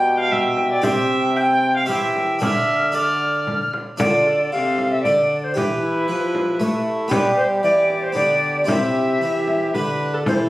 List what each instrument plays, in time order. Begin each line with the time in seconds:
Already playing: harpsichord B2 G4 D5, trombone B2, viola G5, recorder G5
0.20 viola F5
0.32 viola E5, frame drum
0.57 frame drum
0.72 viola D5
0.82 harpsichord C3 G4 C5, trombone C3, viola E5, recorder G5, frame drum
1.37 viola G5, recorder G5
1.76 viola F5
1.86 harpsichord E3 G4 C5, trombone E3, viola E5, recorder G5, frame drum
2.16 frame drum
2.39 harpsichord D3 D4 A4, trombone D3, viola E5, recorder F6, frame drum
2.92 harpsichord D4 A4, viola D5, recorder F6
3.47 frame drum
3.73 frame drum
3.97 harpsichord D3 D4 A4, trombone D3, viola F4, recorder D5, frame drum
4.27 viola A4
4.52 harpsichord C3, trombone C3, recorder F5
4.78 frame drum
4.91 recorder E5
5.03 trombone D3, harpsichord D3, recorder D5, frame drum
5.44 recorder C5
5.54 trombone E3, harpsichord E3 G4, viola G4, recorder B4, frame drum
5.82 viola E4
6.08 harpsichord F3, trombone F3
6.35 frame drum
6.60 harpsichord A3, trombone A3, viola E4, frame drum
7.08 harpsichord G3 B3 G4, trombone G3, viola G4, frame drum
7.13 recorder B4
7.37 recorder C5
7.63 harpsichord E3, trombone E3, recorder D5
7.90 frame drum
8.03 recorder C5
8.12 harpsichord D3 B3 G4, trombone D3, recorder D5, frame drum
8.64 harpsichord C3 C4 E4 G4, viola G4, frame drum
8.69 trombone C3, recorder E5
9.20 trombone E3, harpsichord E3, viola G4
9.48 frame drum
9.74 trombone D3, harpsichord D3, viola B4, frame drum
10.13 viola A4
10.25 harpsichord E3, trombone E3, viola A4, recorder C5, frame drum